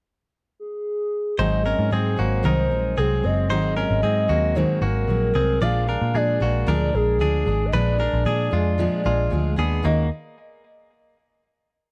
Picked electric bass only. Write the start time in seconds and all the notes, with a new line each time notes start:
1.39 G#1
1.79 G#2
1.92 G#2
2.19 G#1
2.45 C2
2.71 A#1
2.98 C2
3.25 F#1
3.51 G#1
3.91 G#1
4.04 G#2
4.29 D#2
4.82 G#1
5.08 A#1
5.35 C2
5.61 A#1
6.02 A#2
6.14 A#2
6.41 A#1
6.67 D2
6.95 A#1
7.21 D2
7.47 G#1
7.73 A#1
8.13 A#1
8.26 A#2
8.53 F2
9.06 A#1
9.32 D2
9.58 D#2
9.85 D#2